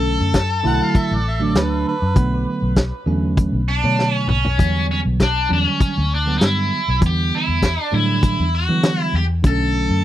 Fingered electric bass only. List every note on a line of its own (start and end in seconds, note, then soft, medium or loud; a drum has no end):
0.00 0.17 B1 medium
0.21 0.62 F#2 medium
0.64 0.80 B1 medium
0.95 muted fingered electric bass stroke soft
1.11 1.53 A1 medium
1.55 1.83 D2 medium
2.02 2.15 F#2 medium
2.16 2.45 B1 medium
2.62 2.91 B1 medium
3.06 3.50 E2 medium
3.53 3.82 B1 medium
3.84 4.26 B2 medium
4.27 4.56 B1 medium
4.59 5.03 E2 medium
5.06 5.47 B1 medium
5.50 5.65 E2 medium
5.81 muted fingered electric bass stroke soft
5.97 6.39 D2 medium
6.42 6.70 G2 medium
6.88 7.01 B1 medium
7.02 7.30 E2 medium
7.48 7.77 E2 medium
7.93 8.36 A2 medium
8.39 8.68 E2 medium
8.69 9.11 E3 medium
9.13 9.42 E2 medium
9.44 9.88 B1 medium
9.90 10.04 F#2 medium